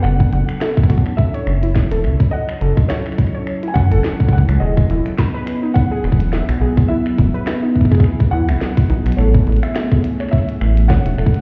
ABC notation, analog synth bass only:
X:1
M:4/4
L:1/16
Q:"Swing 16ths" 1/4=105
K:E
V:1 name="Analog synth bass" clef=bass
F,,, z F,,, z6 z F,,,3 E,,, C,, z | z2 F,,, z6 z F,, E,,, z2 C,, C,, | E,,, z E,,, z6 z E,,,3 B,,, B,,, z | z2 E,,, z6 z E,, B,,, z2 B,,, B,,, |
A,,, z A,,, z6 z A,,,3 E,,, E,,, z |]